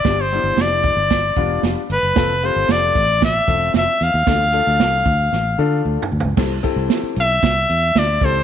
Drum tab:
CC |------------------------|------------------------|------------------------|x-----------------------|
HH |x--x--x--x--x--x--x--x--|x--x--x--x--x--x--x--x--|x--x--x--x--------------|---x--x--x--x--x--x--x--|
SD |o-----o-----o-----o--o--|o-----o-----o-----o--o--|o-----o-----o-----------|o-----o-----o-----o--o--|
FT |------------------------|------------------------|--------------------o-o-|------------------------|
BD |o--------o--o--o--------|o--------o--o--o--------|o--------o--------------|o--o--------o--------o--|